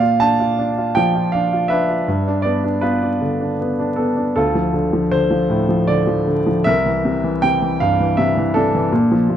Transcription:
Already playing: A#2 D5 F5
0.02 F4
0.20 D4 A5
0.40 F4
0.59 D4
0.78 F4
0.95 F3 G5
1.15 F4
1.32 D4 F5
1.53 F4
1.68 D4 B4 E5
1.89 F4
2.08 G2
2.27 D4
2.42 B3 D5
2.64 D4
2.81 B3 F4 B4
3.02 D4
3.21 D3
3.41 D4
3.61 B3
3.79 D4
3.96 B3 A4
4.17 D4
4.36 D2 F4 A4
4.55 F3
4.73 D3
4.93 F3
5.11 D3 C5
5.30 F3
5.50 A2
5.69 F3
5.87 D3 D5
6.07 F3
6.27 D3
6.46 F3
6.64 C2 A#4 E5
6.86 E3
7.05 C3
7.24 E3
7.42 C3 G5
7.62 E3
7.80 G2 F5
8.00 E3
8.17 C3 E5
8.37 E3
8.54 C3 D4 A4
8.75 E3
8.92 A#2
9.11 F3
9.30 A#2

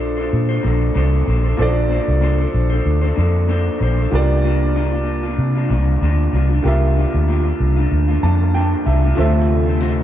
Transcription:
Already playing: A#1 D4 F4 A4 C5 D5
0.17 D4 A4 C5
0.33 A#2
0.49 D4 A4 C5
0.63 A#1 A#3 D4 A4 C5
0.94 C2 A#3 D4 A4 C5
1.26 A#1 A#3 D4 A4 C5
1.43 D4 A4 C5
1.57 A#1 A#3 D4 F4 A4 C5
1.62 D5
1.89 A#3 D4 A4 C5
2.08 C2
2.21 A#3 D4 A4 C5
2.38 D4 A4 C5
2.54 A#1
2.70 D4 A4 C5
2.86 D2
3.01 D4 A4 C5
3.16 F2 A#3 D4 A4 C5
3.48 A#3 D4 A4 C5
3.79 A#1 A#3 D4 A4 C5
3.97 D4 A4 C5
4.10 C2 C3 A#3 D4 F4 G4 A#4
4.15 D5
4.42 C3 A#3 D4 F4
4.74 C3 A#3 D4 F4
4.92 A#3 D4 F4
5.23 A#3 D4 F4
5.38 C3
5.55 A#3 D4 F4
5.69 C2 C3 A#3 D4 F4
6.01 D2 C3 A#3 D4 F4
6.32 C2 C3 A#3 D4 F4
6.50 A#3 D4 F4
6.62 C2 C3 A#3 D4 F4 G4 A#4
6.66 F4 E5
6.96 C3 A#3 D4 F4
7.14 D2
7.28 C3 A#3 D4 F4
7.45 A#3 D4 F4
7.60 C2
7.77 A#3 D4 F4
7.92 D2
8.08 A#3 D4 F4
8.22 F2 C3 A#3 D4 F4 A5
8.54 C3 A#3 D4 F4 G5
8.85 C2 C3 A#3 D4 F4 E5
9.03 A#3 D4 F4
9.15 D2 C3 D3 A3 C4 D4 F4 A4 C5
9.19 F4 E5
9.66 A3 C4 F4
9.80 D3 A3 C4 F4, tambourine

